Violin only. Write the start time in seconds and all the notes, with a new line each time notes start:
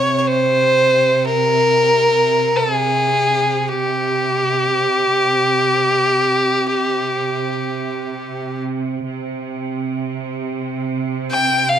Already playing: C#5
0.19 C#5
0.27 C5
1.25 A#4
2.56 A4
2.74 G#4
3.69 G4
11.31 G5
11.69 F5